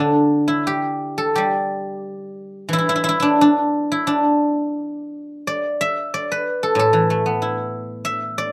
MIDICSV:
0, 0, Header, 1, 2, 480
1, 0, Start_track
1, 0, Tempo, 690449
1, 15, Time_signature, 2, 2, 24, 8
1, 975, Tempo, 660066
1, 2895, Tempo, 689655
1, 4335, Tempo, 648649
1, 6118, End_track
2, 0, Start_track
2, 0, Title_t, "Guzheng"
2, 0, Program_c, 0, 107
2, 0, Note_on_c, 0, 50, 47
2, 0, Note_on_c, 0, 57, 50
2, 0, Note_on_c, 0, 59, 47
2, 0, Note_on_c, 0, 62, 64
2, 0, Note_on_c, 0, 64, 63
2, 0, Note_on_c, 0, 67, 74
2, 329, Note_off_c, 0, 64, 0
2, 331, Note_on_c, 0, 64, 60
2, 338, Note_off_c, 0, 67, 0
2, 445, Note_off_c, 0, 59, 0
2, 465, Note_on_c, 0, 67, 70
2, 575, Note_off_c, 0, 57, 0
2, 819, Note_on_c, 0, 69, 67
2, 939, Note_off_c, 0, 67, 0
2, 942, Note_on_c, 0, 67, 66
2, 958, Note_on_c, 0, 55, 51
2, 1442, Note_off_c, 0, 50, 0
2, 1908, Note_on_c, 0, 52, 51
2, 1938, Note_off_c, 0, 64, 0
2, 1940, Note_on_c, 0, 64, 78
2, 1964, Note_off_c, 0, 62, 0
2, 1977, Note_off_c, 0, 64, 0
2, 1980, Note_on_c, 0, 64, 59
2, 2054, Note_off_c, 0, 64, 0
2, 2057, Note_on_c, 0, 64, 73
2, 2102, Note_off_c, 0, 64, 0
2, 2105, Note_on_c, 0, 64, 54
2, 2161, Note_off_c, 0, 64, 0
2, 2164, Note_on_c, 0, 64, 75
2, 2197, Note_off_c, 0, 64, 0
2, 2200, Note_on_c, 0, 64, 69
2, 2277, Note_off_c, 0, 64, 0
2, 2280, Note_on_c, 0, 64, 59
2, 2300, Note_on_c, 0, 62, 80
2, 2398, Note_off_c, 0, 55, 0
2, 2408, Note_off_c, 0, 69, 0
2, 2434, Note_off_c, 0, 62, 0
2, 2437, Note_on_c, 0, 62, 77
2, 2653, Note_off_c, 0, 67, 0
2, 2800, Note_off_c, 0, 64, 0
2, 2803, Note_on_c, 0, 64, 64
2, 2911, Note_off_c, 0, 62, 0
2, 2914, Note_on_c, 0, 62, 73
2, 3362, Note_off_c, 0, 52, 0
2, 3890, Note_on_c, 0, 74, 75
2, 4124, Note_on_c, 0, 76, 85
2, 4352, Note_off_c, 0, 74, 0
2, 4355, Note_on_c, 0, 74, 71
2, 4486, Note_on_c, 0, 71, 58
2, 4640, Note_off_c, 0, 64, 0
2, 4719, Note_on_c, 0, 69, 65
2, 4808, Note_on_c, 0, 45, 52
2, 4837, Note_off_c, 0, 69, 0
2, 4840, Note_on_c, 0, 69, 63
2, 4895, Note_off_c, 0, 62, 0
2, 4941, Note_on_c, 0, 52, 44
2, 5067, Note_on_c, 0, 57, 41
2, 5183, Note_on_c, 0, 59, 43
2, 5302, Note_on_c, 0, 64, 42
2, 5384, Note_off_c, 0, 76, 0
2, 5722, Note_off_c, 0, 74, 0
2, 5767, Note_on_c, 0, 76, 77
2, 5891, Note_off_c, 0, 52, 0
2, 5999, Note_off_c, 0, 71, 0
2, 6014, Note_on_c, 0, 74, 73
2, 6017, Note_off_c, 0, 57, 0
2, 6118, Note_off_c, 0, 45, 0
2, 6118, Note_off_c, 0, 59, 0
2, 6118, Note_off_c, 0, 64, 0
2, 6118, Note_off_c, 0, 69, 0
2, 6118, Note_off_c, 0, 74, 0
2, 6118, Note_off_c, 0, 76, 0
2, 6118, End_track
0, 0, End_of_file